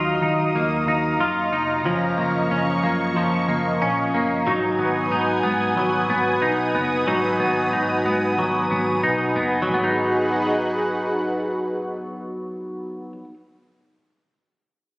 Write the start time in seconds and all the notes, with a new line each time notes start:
Already playing: D#2 F#3 D#4 F4 D#5 F5 A#5 D#6
0.21 D#3 D#4
0.54 D#2 A#3
0.86 D#2 D#4
1.19 F#2 F4
1.52 F1 D#4
1.84 F#1 F3 C#4 C#6
2.18 F#1 A#3
2.50 F#1 C#4
2.83 F#2 A#3
3.16 F#1 F3
3.48 F#1 A#3
3.82 A#1 C#4
4.14 F#1 A#3
4.46 G#1 F#3 D#4 B4 F#5 G#5 D#6
4.79 G#1 B3
5.10 G#1 D#4
5.43 G#2 B3
5.76 G#1 F#3
6.08 G#1 B3
6.41 B1 D#4
6.74 F#1 B3
7.07 G#1 F#3 D#4
7.40 G#1 B3
7.72 G#1 D#4
8.05 G#2 B3
8.37 G#1 F#3
8.70 G#1 B3
9.03 B1 D#4
9.35 F#1 B3
9.62 F#3
9.68 G#1 D#4 F#4 G#4 B4 F#5
9.74 B3
9.84 D#4